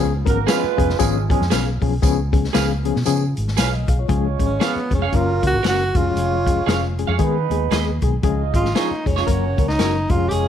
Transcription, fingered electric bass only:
0.00 0.22 C#2 loud
0.26 0.44 G#1 medium
0.64 muted fingered electric bass stroke soft
0.78 0.96 F1 medium
0.99 1.34 G#1 loud
1.40 1.49 F2 medium
1.52 1.78 B1 medium
1.81 2.00 B1 medium
2.03 2.47 C#2 loud
2.55 2.90 C#2 medium
2.97 3.05 B2 medium
3.07 3.33 C#3 loud
3.38 3.55 G#1 medium
3.58 3.84 B1 medium
3.88 4.06 B1 medium
4.09 4.35 C#2 medium
4.39 4.58 G#1 medium
4.76 muted fingered electric bass stroke soft
4.91 5.09 F1 medium
5.12 5.39 F#1 loud
5.43 5.52 C#2 medium
5.53 5.63 G#1 medium
5.64 5.91 F#1 medium
5.95 6.13 F1 medium
6.15 6.60 F1 medium
6.67 7.03 F1 medium
7.08 7.18 F2 medium
7.19 7.46 D#3 loud
7.50 7.69 D#2 medium
7.71 7.98 D#2 medium
8.02 8.21 B1 medium
8.23 8.50 C#2 medium
8.54 8.72 G#1 medium
8.91 muted fingered electric bass stroke soft
9.06 9.24 F1 medium
9.27 9.54 F#1 medium
9.58 9.76 C#2 medium
9.79 10.05 F#1 medium
10.10 10.28 F1 medium
10.32 10.48 F1 medium

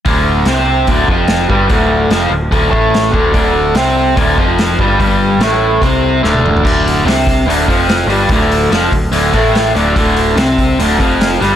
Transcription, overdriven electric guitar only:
0.05 0.46 D2 medium
0.05 0.46 D3 medium
0.47 0.87 C3 medium
0.47 0.88 C4 medium
0.88 1.08 D2 medium
0.88 1.09 D3 loud
1.09 1.48 F2 medium
1.09 1.49 F3 loud
1.49 1.68 G2 medium
1.49 1.69 G3 medium
1.69 2.10 D2 medium
1.69 2.11 D3 medium
2.11 2.30 F2 medium
2.11 2.31 F3 loud
2.31 2.48 D2 medium
2.51 2.70 D2 medium
2.51 2.70 D3 loud
2.70 3.12 A2 medium
2.70 3.12 A3 loud
3.12 3.32 D2 medium
3.12 3.32 D3 medium
3.33 3.75 D2 medium
3.33 3.75 D3 loud
3.75 4.16 C3 medium
3.75 4.17 C4 loud
4.16 4.37 D2 medium
4.16 4.37 D3 loud
4.38 4.79 F2 medium
4.38 4.79 F3 loud
4.80 4.98 G2 medium
4.80 4.98 G3 loud
4.99 5.40 G2 medium
4.99 5.40 G3 medium
5.41 5.81 A2 medium
5.41 5.82 A3 medium
5.82 6.23 C3 medium
5.82 6.23 C4 loud
6.23 6.62 D2 medium
6.23 6.63 D3 medium
6.63 7.05 D2 medium
6.63 7.05 D3 medium
7.05 7.46 C3 medium
7.05 7.47 C4 medium
7.47 7.67 D2 medium
7.47 7.68 D3 medium
7.68 8.07 F2 medium
7.68 8.09 F3 loud
8.08 8.29 G2 medium
8.08 8.30 G3 medium
8.31 8.71 D2 medium
8.31 8.71 D3 medium
8.71 8.91 F2 medium
8.71 8.92 F3 loud
8.92 9.09 D2 medium
9.12 9.33 D2 medium
9.12 9.34 D3 loud
9.33 9.74 A2 medium
9.33 9.74 A3 loud
9.74 9.94 D2 medium
9.74 9.95 D3 medium
9.96 10.36 D2 medium
9.96 10.37 D3 loud
10.37 10.77 C3 medium
10.37 10.78 C4 medium
10.79 10.99 D2 medium
10.79 10.99 D3 loud
11.00 11.40 F2 medium
11.00 11.40 F3 medium
11.40 11.56 G2 medium
11.40 11.56 G3 medium

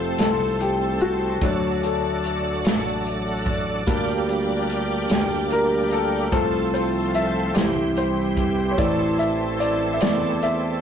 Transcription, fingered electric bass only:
0.00 0.15 F1 medium
0.18 1.37 C2 medium
1.42 2.65 D2 medium
2.65 3.83 A1 medium
3.87 5.06 D2 medium
5.10 6.29 D2 medium
6.32 7.51 C2 medium
7.56 8.75 C2 loud
8.78 9.97 A1 medium
10.01 10.81 E2 medium

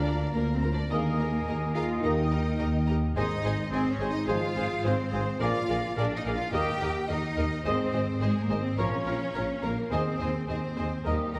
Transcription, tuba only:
0.00 0.28 D2 medium
0.34 0.84 D2 medium
0.90 1.40 D#2 medium
1.47 1.96 D#2 medium
2.02 2.52 D#2 medium
2.59 3.01 D#2 medium
3.15 3.27 G#1 medium
3.43 3.55 G#1 medium
3.72 3.83 G#1 medium
3.99 4.11 G#1 medium
4.28 4.39 G#1 medium
4.56 4.67 G#1 medium
4.84 4.95 G#1 medium
5.12 5.23 G#1 medium
5.40 5.51 A#1 medium
5.69 5.80 A#1 medium
5.97 6.08 A#1 medium
6.25 6.36 A#1 medium
6.52 6.64 D#2 medium
6.80 6.92 D#2 medium
7.09 7.20 D#2 medium
7.38 7.49 D#2 medium
7.66 7.77 G#1 medium
7.94 8.05 G#1 medium
8.21 8.33 G#1 medium
8.49 8.61 G#1 medium
8.78 8.89 A#1 medium
9.06 9.17 A#1 medium
9.34 9.46 A#1 medium
9.63 9.74 A#1 medium
9.91 10.02 D#2 medium
10.19 10.31 D#2 medium
10.48 10.59 D#2 medium
10.77 10.88 D#2 medium
11.06 11.18 D#2 medium
11.35 11.39 D#2 medium

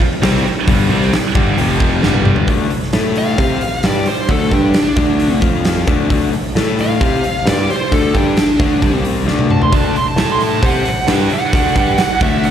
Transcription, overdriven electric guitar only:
0.22 0.44 C3 loud
0.22 0.44 G3 loud
0.22 0.44 C4 medium
0.45 muted overdriven electric guitar stroke medium
0.68 0.89 G2 medium
0.68 0.90 D3 loud
0.68 0.90 G3 loud
0.90 1.12 C3 medium
0.90 1.12 G3 medium
0.90 1.12 C4 medium
1.13 muted overdriven electric guitar stroke medium
1.35 1.57 G2 loud
1.35 1.57 D3 loud
1.35 1.57 G3 loud
1.57 2.02 F2 medium
1.57 2.02 C3 medium
1.57 2.02 F3 medium
2.03 2.47 G2 medium
2.03 2.47 D3 loud
2.03 2.48 G3 loud
2.48 2.70 D3 medium
2.48 2.70 A3 medium
2.48 2.70 D4 loud
2.71 muted overdriven electric guitar stroke medium
2.93 3.38 A3 medium
2.93 3.38 E4 loud
2.93 3.39 A4 loud
3.39 3.61 C4 medium
3.39 3.61 G4 medium
3.39 3.61 C5 medium
3.84 4.06 G3 loud
3.84 4.06 D4 loud
3.84 4.06 G4 loud
4.07 muted overdriven electric guitar stroke medium
4.29 4.51 D3 loud
4.29 4.51 A3 loud
4.29 4.51 D4 loud
4.52 4.74 G3 loud
4.52 4.74 D4 loud
4.52 4.74 G4 loud
4.75 muted overdriven electric guitar stroke medium
4.97 5.41 D3 medium
4.97 5.42 A3 loud
4.97 5.42 D4 loud
5.41 5.87 F3 medium
5.41 5.87 C4 loud
5.41 5.87 F4 loud
5.87 6.08 D3 medium
5.87 6.09 A3 medium
5.87 6.09 D4 loud
6.10 6.32 D3 medium
6.10 6.32 A3 loud
6.10 6.33 D4 loud
6.33 muted overdriven electric guitar stroke medium
6.56 7.01 A3 medium
6.56 7.01 E4 loud
6.56 7.01 A4 loud
7.02 7.23 C4 medium
7.02 7.24 G4 medium
7.02 7.24 C5 medium
7.47 7.69 G3 loud
7.47 7.69 D4 loud
7.47 7.69 G4 loud
7.70 muted overdriven electric guitar stroke medium
7.91 8.13 D3 medium
7.91 8.14 A3 medium
7.91 8.13 D4 loud
8.14 8.36 G3 loud
8.14 8.36 D4 loud
8.14 8.36 G4 medium
8.37 muted overdriven electric guitar stroke medium
8.59 8.81 D3 medium
8.59 8.81 A3 medium
8.59 8.82 D4 loud
8.82 9.26 C3 medium
8.82 9.27 G3 medium
8.82 9.27 C4 loud
9.26 9.70 D3 loud
9.26 9.71 A3 loud
9.26 9.71 D4 loud
9.72 9.94 D3 medium
9.72 9.94 A3 loud
9.72 9.94 D4 medium
9.95 muted overdriven electric guitar stroke medium
10.17 10.61 A3 loud
10.17 10.62 E4 medium
10.17 10.62 A4 loud
10.62 10.84 C4 medium
10.62 10.84 G4 medium
10.62 10.85 C5 medium
11.08 11.30 G3 medium
11.08 11.30 D4 loud
11.08 11.30 G4 loud
11.32 muted overdriven electric guitar stroke medium
11.53 11.75 D3 medium
11.53 11.76 A3 loud
11.53 11.75 D4 loud
11.76 11.98 G3 loud
11.76 11.98 D4 medium
11.76 11.98 G4 loud
11.99 muted overdriven electric guitar stroke medium
12.22 12.51 D3 medium
12.22 12.51 A3 medium
12.22 12.51 D4 loud

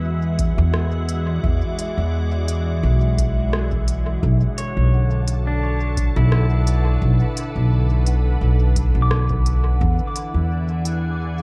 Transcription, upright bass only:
0.00 0.54 E2 medium
0.58 1.41 E2 medium
1.44 1.60 E2 medium
1.98 2.80 E2 medium
2.83 4.20 B1 medium
4.23 4.39 B1 medium
4.77 6.12 B1 medium
6.16 6.99 B1 loud
7.02 7.18 B1 medium
7.56 8.38 B1 medium
8.41 8.91 B1 medium
8.95 9.78 B1 medium
9.81 9.97 E2 medium
10.34 11.42 E2 medium

